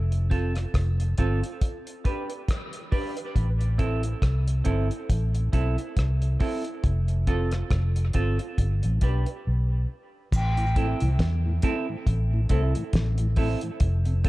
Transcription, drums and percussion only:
0.12 closed hi-hat
0.31 kick, closed hi-hat
0.55 cross-stick, closed hi-hat
0.74 kick, cross-stick, closed hi-hat
1.00 closed hi-hat
1.18 kick, closed hi-hat
1.44 closed hi-hat
1.62 kick, closed hi-hat
1.87 closed hi-hat
2.05 kick, closed hi-hat
2.30 closed hi-hat
2.48 kick, cross-stick, closed hi-hat
2.73 closed hi-hat
2.92 kick, open hi-hat
3.17 closed hi-hat
3.36 kick, closed hi-hat
3.61 closed hi-hat
3.79 kick, closed hi-hat
4.03 closed hi-hat
4.22 kick, cross-stick, closed hi-hat
4.48 closed hi-hat
4.65 kick, closed hi-hat
4.91 closed hi-hat
5.09 kick, closed hi-hat
5.35 closed hi-hat
5.53 kick, closed hi-hat
5.78 closed hi-hat
5.97 kick, cross-stick, closed hi-hat
6.22 closed hi-hat
6.40 kick, open hi-hat
6.64 closed hi-hat
6.84 kick, closed hi-hat
7.08 closed hi-hat
7.27 kick, closed hi-hat
7.51 cross-stick, closed hi-hat
7.71 kick, cross-stick, closed hi-hat
7.96 closed hi-hat
8.13 kick, closed hi-hat
8.39 closed hi-hat
8.58 kick, closed hi-hat
8.83 closed hi-hat
9.01 kick, closed hi-hat
9.26 closed hi-hat
10.32 kick, crash, cabasa
10.57 closed hi-hat
10.76 kick, closed hi-hat
11.00 closed hi-hat
11.19 kick, snare, closed hi-hat
11.62 kick, closed hi-hat
12.07 kick, closed hi-hat
12.49 kick, closed hi-hat
12.75 closed hi-hat
12.93 kick, snare, closed hi-hat
13.18 closed hi-hat
13.36 kick, open hi-hat
13.61 closed hi-hat
13.80 kick, closed hi-hat
14.05 closed hi-hat
14.25 kick, closed hi-hat

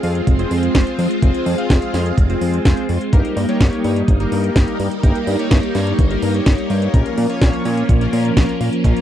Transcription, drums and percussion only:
0.03 open hi-hat
0.15 closed hi-hat
0.27 kick, closed hi-hat
0.39 closed hi-hat
0.51 open hi-hat
0.63 closed hi-hat
0.75 kick, snare, closed hi-hat
0.87 closed hi-hat
0.99 open hi-hat
1.11 closed hi-hat
1.22 kick, closed hi-hat
1.34 closed hi-hat
1.46 open hi-hat
1.58 closed hi-hat
1.70 kick, snare, closed hi-hat
1.82 closed hi-hat
1.94 snare, open hi-hat
2.06 closed hi-hat
2.18 kick, closed hi-hat
2.30 closed hi-hat
2.41 open hi-hat
2.54 closed hi-hat
2.65 kick, snare, closed hi-hat
2.77 closed hi-hat
2.89 open hi-hat
3.01 closed hi-hat
3.13 kick, closed hi-hat
3.25 closed hi-hat
3.37 open hi-hat
3.49 closed hi-hat
3.60 kick, snare, closed hi-hat
3.73 closed hi-hat
3.84 open hi-hat
3.96 closed hi-hat
4.08 kick, closed hi-hat
4.20 closed hi-hat
4.32 open hi-hat
4.44 closed hi-hat
4.56 kick, snare, closed hi-hat
4.68 closed hi-hat
4.80 open hi-hat
4.91 closed hi-hat
5.03 kick, closed hi-hat
5.15 closed hi-hat
5.27 open hi-hat
5.39 closed hi-hat
5.51 kick, snare, closed hi-hat
5.63 closed hi-hat
5.75 snare, open hi-hat
5.87 closed hi-hat
5.99 kick, closed hi-hat
6.11 closed hi-hat
6.22 open hi-hat
6.34 closed hi-hat
6.46 kick, snare, closed hi-hat
6.58 closed hi-hat
6.70 open hi-hat
6.82 closed hi-hat
6.94 kick, closed hi-hat
7.06 closed hi-hat
7.18 open hi-hat
7.30 closed hi-hat
7.42 kick, snare, closed hi-hat
7.53 closed hi-hat
7.65 open hi-hat
7.77 closed hi-hat
7.89 kick, closed hi-hat
8.01 closed hi-hat
8.13 open hi-hat
8.25 closed hi-hat
8.37 kick, snare, closed hi-hat
8.49 closed hi-hat
8.61 open hi-hat
8.73 closed hi-hat
8.84 kick, closed hi-hat
8.96 closed hi-hat

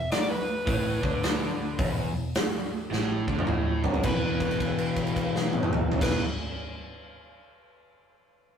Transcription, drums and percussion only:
0.11 snare, open hi-hat
0.67 kick, open hi-hat
1.03 kick
1.23 snare, open hi-hat
1.79 kick, open hi-hat
2.35 snare, open hi-hat
2.93 snare
3.28 kick
3.39 mid tom
3.47 mid tom
3.84 floor tom
3.94 floor tom
4.03 kick, crash
4.40 kick, crash
4.51 crash
4.60 kick, crash
4.79 crash
4.96 kick, crash
5.07 crash
5.16 kick, crash
5.36 snare
5.53 high tom
5.63 mid tom
5.73 mid tom
5.92 floor tom
6.01 kick, snare, crash

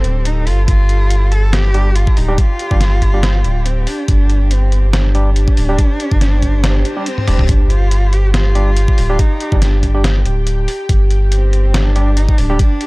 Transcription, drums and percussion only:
0.04 closed hi-hat
0.25 closed hi-hat
0.47 open hi-hat
0.68 kick, closed hi-hat
0.89 closed hi-hat
1.10 closed hi-hat
1.32 closed hi-hat
1.53 snare, closed hi-hat
1.74 closed hi-hat
1.96 closed hi-hat
2.07 kick
2.17 open hi-hat
2.38 kick, closed hi-hat
2.59 closed hi-hat
2.71 kick
2.81 snare, closed hi-hat
3.02 kick, closed hi-hat
3.23 snare, closed hi-hat
3.44 closed hi-hat
3.66 closed hi-hat
3.87 open hi-hat
4.08 kick, closed hi-hat
4.30 closed hi-hat
4.51 closed hi-hat
4.72 closed hi-hat
4.93 snare, closed hi-hat
5.15 closed hi-hat
5.36 closed hi-hat
5.48 kick
5.57 open hi-hat
5.79 kick, closed hi-hat
6.00 closed hi-hat
6.12 kick
6.21 snare, closed hi-hat
6.42 kick, closed hi-hat
6.64 snare, closed hi-hat
6.85 closed hi-hat
7.06 closed hi-hat
7.18 high tom
7.28 open hi-hat, mid tom
7.39 mid tom
7.49 kick, closed hi-hat
7.70 closed hi-hat
7.91 closed hi-hat
8.13 closed hi-hat
8.34 snare, closed hi-hat
8.55 closed hi-hat
8.77 closed hi-hat
8.88 kick
8.98 open hi-hat
9.19 kick, closed hi-hat
9.40 closed hi-hat
9.52 kick
9.62 snare, closed hi-hat
9.83 kick, closed hi-hat
10.04 snare, closed hi-hat
10.26 closed hi-hat
10.47 closed hi-hat
10.68 open hi-hat
10.89 kick, closed hi-hat
11.11 closed hi-hat
11.32 closed hi-hat
11.53 closed hi-hat
11.74 snare, closed hi-hat
11.96 closed hi-hat
12.17 closed hi-hat
12.29 kick
12.38 open hi-hat
12.59 kick, closed hi-hat
12.81 closed hi-hat

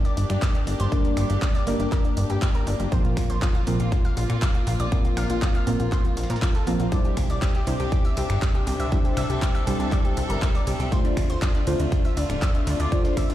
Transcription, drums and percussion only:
0.05 snare, closed hi-hat
0.17 closed hi-hat, open hi-hat
0.30 finger snap, closed hi-hat
0.42 kick, snare, clap, closed hi-hat
0.55 closed hi-hat
0.67 closed hi-hat, open hi-hat
0.80 closed hi-hat
0.92 kick, closed hi-hat
1.05 closed hi-hat
1.17 finger snap, open hi-hat
1.30 closed hi-hat
1.42 kick, snare, clap, closed hi-hat
1.55 snare, closed hi-hat
1.67 snare, closed hi-hat, open hi-hat
1.80 closed hi-hat
1.92 kick, clap, closed hi-hat
2.05 closed hi-hat
2.17 closed hi-hat, open hi-hat
2.30 closed hi-hat
2.42 kick, snare, clap, closed hi-hat
2.55 closed hi-hat
2.67 closed hi-hat, open hi-hat
2.80 snare, closed hi-hat
2.92 kick, closed hi-hat
3.05 closed hi-hat
3.17 finger snap, kick, snare, closed hi-hat, open hi-hat
3.30 closed hi-hat
3.42 kick, snare, clap, closed hi-hat
3.55 snare, closed hi-hat
3.67 closed hi-hat, open hi-hat
3.80 snare, closed hi-hat
3.92 kick, closed hi-hat
4.05 snare, closed hi-hat
4.17 closed hi-hat, open hi-hat
4.30 finger snap, closed hi-hat
4.42 kick, snare, clap, closed hi-hat
4.55 closed hi-hat
4.67 closed hi-hat, open hi-hat
4.80 closed hi-hat
4.92 kick, closed hi-hat
5.05 closed hi-hat
5.17 finger snap, open hi-hat
5.30 closed hi-hat
5.42 kick, snare, clap, closed hi-hat
5.55 snare, closed hi-hat
5.67 snare, closed hi-hat, open hi-hat
5.80 closed hi-hat
5.92 kick, clap, closed hi-hat
6.05 closed hi-hat
6.17 snare, closed hi-hat, open hi-hat
6.23 snare, closed hi-hat
6.30 snare, closed hi-hat
6.36 snare, closed hi-hat
6.42 kick, snare, clap, closed hi-hat
6.55 closed hi-hat
6.67 closed hi-hat, open hi-hat
6.80 snare, closed hi-hat
6.92 kick, closed hi-hat
7.05 closed hi-hat
7.17 finger snap, kick, snare, closed hi-hat, open hi-hat, ride
7.30 closed hi-hat
7.42 kick, snare, clap, closed hi-hat
7.55 snare, closed hi-hat
7.67 closed hi-hat, open hi-hat, ride
7.80 snare, closed hi-hat
7.92 kick, closed hi-hat
8.05 snare, closed hi-hat
8.17 closed hi-hat, open hi-hat, ride
8.30 finger snap, closed hi-hat
8.42 kick, snare, clap, closed hi-hat
8.55 closed hi-hat
8.67 closed hi-hat, open hi-hat, ride
8.80 closed hi-hat
8.92 kick, closed hi-hat
9.05 closed hi-hat
9.17 finger snap, open hi-hat, ride
9.30 closed hi-hat
9.42 kick, snare, clap, closed hi-hat
9.55 snare, closed hi-hat
9.67 snare, closed hi-hat, open hi-hat, ride
9.80 closed hi-hat
9.92 kick, clap, closed hi-hat
10.05 closed hi-hat
10.17 closed hi-hat, open hi-hat, ride
10.30 closed hi-hat
10.42 kick, snare, clap, closed hi-hat
10.55 closed hi-hat
10.67 closed hi-hat, open hi-hat, ride
10.80 snare, closed hi-hat
10.92 kick, closed hi-hat
11.05 closed hi-hat
11.17 finger snap, kick, snare, closed hi-hat, open hi-hat, ride
11.30 closed hi-hat
11.42 kick, snare, clap, closed hi-hat
11.55 snare, closed hi-hat
11.67 closed hi-hat, open hi-hat, ride
11.80 snare, closed hi-hat
11.92 kick, closed hi-hat
12.05 snare, closed hi-hat
12.17 closed hi-hat, open hi-hat, ride
12.30 finger snap, closed hi-hat
12.42 kick, snare, clap, closed hi-hat
12.55 closed hi-hat
12.67 snare, closed hi-hat, open hi-hat, ride
12.80 closed hi-hat
12.92 kick, closed hi-hat
13.05 snare, closed hi-hat
13.17 finger snap, kick, open hi-hat, ride
13.30 closed hi-hat

